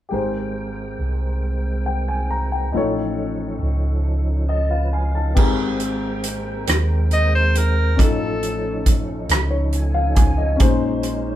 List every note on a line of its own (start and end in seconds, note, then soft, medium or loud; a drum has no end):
0.09 0.96 G#1 medium
0.09 1.39 G#2 soft
0.09 2.70 G#3 soft
0.09 2.70 C4 soft
0.09 2.69 G4 soft
0.09 2.70 G#4 soft
0.09 2.70 A#4 soft
0.09 2.71 A#4 soft
0.09 2.70 G5 soft
0.14 2.71 C5 soft
0.99 2.70 C2 medium
1.86 2.07 G5 soft
2.08 2.29 G#5 medium
2.30 2.51 A#5 soft
2.52 2.94 G5 soft
2.72 3.58 A1 medium
2.72 4.01 A2 medium
2.72 5.33 F3 soft
2.72 5.33 C#4 soft
2.72 5.32 D#4 medium
2.72 4.46 D#4 soft
2.72 5.32 F4 soft
2.72 4.46 A4 medium
2.72 5.33 A4 soft
2.77 5.34 C#5 medium
3.62 5.32 C#2 medium
4.48 4.70 A4 soft
4.48 4.70 D#5 soft
4.48 4.89 A5 soft
4.70 5.12 F4 soft
4.70 5.12 B4 soft
4.70 4.92 F5 soft
4.93 5.34 F5 soft
4.93 5.14 G#5 soft
5.15 5.57 D#4 soft
5.15 5.56 A4 soft
5.15 5.56 A5 soft
5.33 6.63 G#2 medium
5.33 7.95 G#3 medium
5.33 5.42 B3 soft
5.33 7.95 C4 medium
5.33 7.94 G4 soft
5.33 7.95 G#4 medium
5.33 7.94 A#4 medium
5.33 7.95 G5 medium
5.33 kick medium
5.33 crash medium
5.37 7.96 G#3 medium
5.37 7.97 A#3 soft
5.37 7.97 C4 medium
5.37 7.96 C4 medium
5.37 7.97 A#4 medium
5.37 7.95 A#4 medium
5.80 closed hi-hat soft
6.24 closed hi-hat medium
6.67 7.95 D#2 medium
6.67 cross-stick medium
6.67 closed hi-hat medium
7.11 7.33 D#5 medium
7.11 closed hi-hat soft
7.35 7.60 C5 medium
7.55 8.00 A#4 medium
7.55 closed hi-hat medium
7.96 9.25 A2 soft
7.96 10.57 F3 medium
7.96 10.58 F3 medium
7.96 10.58 A3 medium
7.96 10.55 C#4 soft
7.96 10.57 C#4 soft
7.96 11.36 C#4 medium
7.96 10.56 D#4 soft
7.96 10.57 D#4 soft
7.96 11.36 D#4 medium
7.96 10.57 F4 soft
7.96 10.57 A4 medium
7.96 kick medium
7.96 closed hi-hat medium
8.01 10.58 A4 medium
8.01 8.95 A4 medium
8.43 closed hi-hat soft
8.86 kick medium
8.86 closed hi-hat medium
9.29 10.56 C#2 medium
9.29 cross-stick medium
9.29 closed hi-hat medium
9.51 9.93 C#5 soft
9.73 10.57 G#5 medium
9.73 closed hi-hat soft
9.94 10.16 F5 medium
10.15 10.37 G#5 medium
10.15 kick medium
10.15 closed hi-hat medium
10.38 10.80 D#5 soft
10.56 11.36 A#2 medium
10.56 11.36 C#4 medium
10.56 11.36 D#4 medium
10.56 11.36 G#4 medium
10.56 kick medium
10.56 closed hi-hat medium
10.61 11.36 G#3 medium
10.61 11.36 C#4 medium
10.61 11.36 D#4 medium
10.61 11.36 C5 medium
11.03 closed hi-hat soft